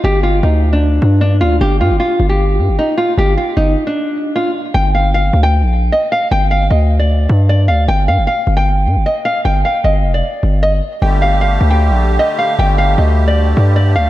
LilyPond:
<<
  \new Staff \with { instrumentName = "Nylon-string guitar" } { \time 4/4 \key ees \lydian \tempo 4 = 153 g'8 f'8 ees'8. d'4~ d'16 d'8 f'8 | g'8 f'8 f'8. g'4~ g'16 ees'8 f'8 | g'8 f'8 ees'8. d'4~ d'16 f'8 r8 | g''8 f''8 f''8. g''4~ g''16 ees''8 f''8 |
g''8 f''8 ees''8. d''4~ d''16 d''8 f''8 | g''8 f''8 f''8. g''4~ g''16 ees''8 f''8 | g''8 f''8 ees''8. d''4~ d''16 ees''8 r8 | g''8 f''8 f''8. g''4~ g''16 ees''8 f''8 |
g''8 f''8 ees''8. d''4~ d''16 d''8 f''8 | }
  \new Staff \with { instrumentName = "Accordion" } { \clef bass \time 4/4 \key ees \lydian r1 | r1 | r1 | r1 |
r1 | r1 | r1 | <d g a g'>1~ |
<d g a g'>1 | }
  \new Staff \with { instrumentName = "808-style bass" } { \clef bass \time 4/4 \key ees \lydian g,,4 d,4. g,4 d,8 | g,,8 g,16 g,,16 r8 g,,4 g,16 g,,16 r4 | g,,8 r8 g,,8 r2 r8 | g,,4. d,8. bes,,8. r4 |
g,,4 d,4. g,4 d,8 | g,,8 g,16 g,,16 r8 g,,4 g,16 g,,16 r4 | g,,8 r8 g,,8 f,,8 r8 g,,4 r8 | g,,4. d,8. bes,,8. r4 |
g,,4 d,4. g,4 d,8 | }
>>